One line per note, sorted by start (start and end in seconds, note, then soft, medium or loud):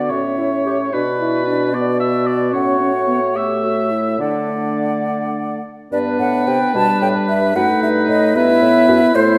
0.00 0.13 D3 soft
0.00 0.12 B3 soft
0.00 0.12 D5 soft
0.00 0.12 F#5 soft
0.10 0.93 A2 soft
0.10 0.92 C#4 medium
0.10 0.23 F#4 soft
0.10 0.94 C#5 soft
0.10 0.92 E5 soft
0.38 0.50 E4 soft
0.66 0.78 G4 medium
0.92 2.50 B2 soft
0.92 1.05 D4 medium
0.92 1.72 F#4 medium
0.92 1.76 B4 medium
0.92 2.50 D5 medium
1.20 1.46 E4 medium
1.47 1.75 D4 medium
1.73 2.54 B3 medium
1.73 3.37 F#4 medium
1.73 1.99 D5 medium
2.00 2.28 E5 medium
2.26 2.53 D5 medium
2.53 4.21 A2 medium
2.53 2.80 C#4 medium
2.53 3.38 C#5 medium
2.53 3.37 F#5 medium
2.80 2.93 C#4 medium
3.07 3.20 B3 medium
3.35 4.18 A3 medium
3.35 3.65 G4 soft
3.35 4.20 E5 soft
3.63 3.93 F#4 soft
3.91 4.19 E4 soft
4.20 5.63 D3 soft
4.20 5.61 A3 soft
4.20 5.60 D4 soft
4.20 5.61 D5 soft
4.20 5.61 F#5 soft
5.92 6.18 G2 medium
5.92 6.76 B3 medium
5.92 6.71 D4 medium
5.92 7.52 B4 medium
5.92 5.98 D5 medium
6.19 6.46 A2 medium
6.19 6.49 F#5 medium
6.47 6.59 C3 medium
6.47 6.75 G5 medium
6.75 6.87 B2 medium
6.75 7.55 G3 medium
6.75 7.57 D4 medium
6.75 7.01 A5 loud
7.02 7.14 A2 medium
7.02 7.08 G5 medium
7.28 7.55 G2 medium
7.28 7.57 E5 medium
7.55 7.67 F#2 medium
7.55 8.37 A3 medium
7.55 8.37 D#4 medium
7.55 8.34 B4 medium
7.55 7.82 F#5 medium
7.82 8.08 G2 medium
7.82 7.89 E5 medium
8.09 8.35 A2 medium
8.09 8.38 D#5 medium
8.35 8.61 G2 medium
8.35 9.14 B3 medium
8.35 9.15 E4 medium
8.35 9.14 B4 medium
8.35 9.17 E5 loud
8.62 8.88 A2 medium
8.89 9.01 F#2 medium
9.15 9.38 A2 medium
9.15 9.38 A3 medium
9.15 9.38 E4 medium
9.15 9.38 C5 loud
9.15 9.38 C5 medium